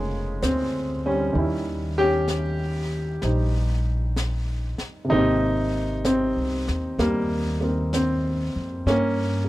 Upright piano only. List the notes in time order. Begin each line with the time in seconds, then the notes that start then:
Already playing: C#3 F3 G#3 A3 A#3 D#4 F4 C5
0.43 C4
1.06 G3 C#4
1.33 D#3 G3 C#4
1.38 E4
1.98 C#4 G4
3.22 G3 D#4 C5
5.05 C3
5.09 D#3 A#3 C4 D#4
5.15 G4
6.05 C4
6.99 G3 A#3
7.61 A#3 C4 A#4
7.94 C4
8.87 A#3 C#4
9.44 C#3